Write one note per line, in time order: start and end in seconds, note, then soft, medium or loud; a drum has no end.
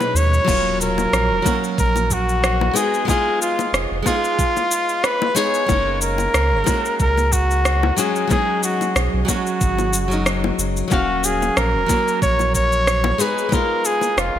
0.00 0.44 B2 medium
0.00 0.43 F#3 medium
0.00 0.43 G#3 medium
0.00 0.44 G#3 medium
0.00 0.44 C#4 medium
0.00 0.43 D#4 medium
0.00 0.45 D#4 medium
0.00 0.18 B4 loud
0.00 high bongo medium
0.00 cabasa soft
0.14 0.39 D#2 loud
0.14 0.81 C#5 loud
0.14 cabasa medium
0.34 cabasa soft
0.45 1.07 D#1 loud
0.45 1.40 F#3 medium
0.45 1.41 A#3 medium
0.45 1.42 C#4 medium
0.45 kick loud
0.45 high bongo medium
0.49 1.43 F4 loud
0.49 crash loud
0.49 cabasa soft
0.81 1.62 A#4 loud
0.81 cabasa medium
0.98 high bongo medium
0.98 cabasa soft
1.12 1.31 A#1 loud
1.12 cross-stick loud
1.12 cabasa soft
1.30 1.41 D#1 medium
1.42 2.71 F#3 medium
1.42 2.72 A#3 medium
1.42 2.73 C#4 medium
1.42 kick loud
1.42 high bongo medium
1.42 cabasa medium
1.48 2.73 F#4 medium
1.64 cabasa soft
1.78 2.70 A#1 medium
1.78 2.14 A#4 loud
1.78 kick loud
1.78 cabasa soft
1.96 high bongo medium
1.96 cabasa soft
2.11 2.78 F#4 loud
2.11 kick medium
2.11 cabasa medium
2.29 cabasa soft
2.44 cross-stick loud
2.44 cabasa soft
2.61 high bongo medium
2.74 3.04 G#3 medium
2.74 3.04 B3 medium
2.74 3.05 D#4 medium
2.74 3.05 G#4 loud
2.74 3.08 G#4 medium
2.74 cabasa medium
2.94 cabasa soft
3.05 4.01 G#3 medium
3.05 4.02 B3 medium
3.05 4.03 D#4 medium
3.05 3.39 G#4 loud
3.05 kick loud
3.05 high bongo medium
3.09 4.04 F4 loud
3.09 cabasa soft
3.42 3.77 F4 medium
3.42 cabasa medium
3.59 high bongo medium
3.59 cabasa soft
3.73 3.86 F1 loud
3.73 cross-stick loud
3.73 cabasa soft
3.91 4.02 F1 medium
4.03 5.31 G#3 medium
4.03 5.32 B3 medium
4.03 5.33 D#4 medium
4.03 5.06 F4 loud
4.03 kick medium
4.03 high bongo medium
4.07 5.34 G#4 medium
4.07 cabasa medium
4.24 cabasa soft
4.39 kick loud
4.39 cabasa soft
4.57 high bongo medium
4.57 cabasa soft
4.71 cabasa medium
4.89 cabasa soft
5.04 5.37 B4 loud
5.04 cross-stick loud
5.04 cabasa soft
5.22 high bongo loud
5.35 5.65 G#3 medium
5.35 5.65 B3 medium
5.35 5.66 D#4 medium
5.35 5.66 G#4 loud
5.35 6.02 C#5 loud
5.35 cabasa medium
5.54 cabasa soft
5.66 6.28 F#1 loud
5.66 6.62 G#3 medium
5.66 6.63 A#3 medium
5.66 6.64 C#4 medium
5.66 kick loud
5.66 high bongo medium
5.66 cabasa soft
5.72 6.65 D#4 loud
6.01 6.96 A#4 loud
6.01 cabasa medium
6.18 high bongo medium
6.18 cabasa soft
6.34 6.53 C#2 loud
6.34 cross-stick loud
6.34 cabasa soft
6.52 6.63 F#1 medium
6.64 7.93 G#3 medium
6.64 7.93 A#3 medium
6.64 7.94 C#4 medium
6.64 kick loud
6.64 high bongo loud
6.64 cabasa medium
6.69 7.95 F#4 medium
6.85 cabasa soft
7.00 7.91 C#2 medium
7.00 7.34 A#4 loud
7.00 kick loud
7.00 cabasa soft
7.17 high bongo medium
7.17 cabasa soft
7.32 8.00 F#4 loud
7.32 kick medium
7.32 cabasa medium
7.51 cabasa soft
7.65 cross-stick loud
7.65 cabasa soft
7.83 high bongo loud
7.97 8.26 F#3 loud
7.97 8.27 G#3 medium
7.97 8.27 C#4 medium
7.97 8.28 F#4 loud
7.97 8.30 G#4 medium
7.97 cabasa medium
8.16 cabasa soft
8.27 9.23 F#3 medium
8.27 9.24 G#3 medium
8.27 9.25 C#4 medium
8.27 8.61 G#4 loud
8.27 kick loud
8.27 high bongo loud
8.27 cabasa soft
8.33 9.26 D#4 loud
8.63 8.99 F#4 medium
8.63 cabasa medium
8.81 high bongo medium
8.81 cabasa soft
8.95 9.08 B1 loud
8.95 cross-stick loud
8.95 cabasa soft
9.13 9.24 B1 medium
9.22 10.06 F#3 medium
9.22 9.30 G#4 medium
9.26 10.07 G#3 medium
9.26 10.08 C#4 medium
9.26 10.26 F#4 medium
9.26 10.09 F#4 medium
9.26 kick medium
9.26 high bongo medium
9.26 cabasa medium
9.47 cabasa soft
9.61 9.94 G#1 medium
9.61 kick loud
9.61 cabasa soft
9.78 high bongo medium
9.78 cabasa soft
9.93 10.52 F#1 medium
9.93 cabasa medium
10.08 10.86 F#3 medium
10.08 10.87 G#3 medium
10.08 10.88 C#4 medium
10.08 cabasa soft
10.13 10.89 D#4 medium
10.26 cross-stick loud
10.26 cabasa soft
10.44 high bongo medium
10.58 10.83 F#1 loud
10.58 cabasa medium
10.77 cabasa soft
10.88 11.50 D#1 loud
10.88 11.84 F#3 medium
10.88 11.85 A#3 medium
10.88 kick loud
10.88 cabasa soft
10.92 11.86 C#4 medium
10.92 11.26 F#4 loud
10.92 11.87 F5 medium
10.92 high bongo medium
11.24 11.59 G#4 medium
11.24 cabasa medium
11.42 high bongo medium
11.42 cabasa soft
11.57 11.76 A#1 loud
11.57 12.22 A#4 loud
11.57 cross-stick loud
11.57 cabasa soft
11.75 11.85 D#1 medium
11.86 13.15 F#3 medium
11.86 13.16 A#3 medium
11.86 13.16 C#4 medium
11.86 kick loud
11.86 high bongo medium
11.86 cabasa medium
11.92 13.17 F#4 medium
12.08 cabasa soft
12.22 13.13 A#1 medium
12.22 12.52 C#5 loud
12.22 kick loud
12.22 cabasa soft
12.39 high bongo medium
12.39 cabasa soft
12.54 13.23 C#5 loud
12.54 kick medium
12.54 cabasa medium
12.72 cabasa soft
12.87 cross-stick loud
12.87 cabasa soft
13.04 high bongo loud
13.18 13.48 G#3 medium
13.18 13.48 B3 medium
13.18 13.49 D#4 medium
13.18 13.49 G#4 loud
13.18 13.56 B4 medium
13.18 cabasa medium
13.38 cabasa soft
13.49 14.39 G#3 medium
13.49 14.39 B3 medium
13.49 kick loud
13.49 high bongo medium
13.49 cabasa soft
13.53 14.39 D#4 medium
13.53 14.39 F4 medium
13.53 13.87 A#4 loud
13.85 14.20 G#4 loud
13.85 cabasa medium
14.01 high bongo medium
14.01 cabasa soft
14.17 14.30 F1 loud
14.17 14.39 F4 medium
14.17 cross-stick loud
14.17 cabasa soft
14.35 14.39 F1 medium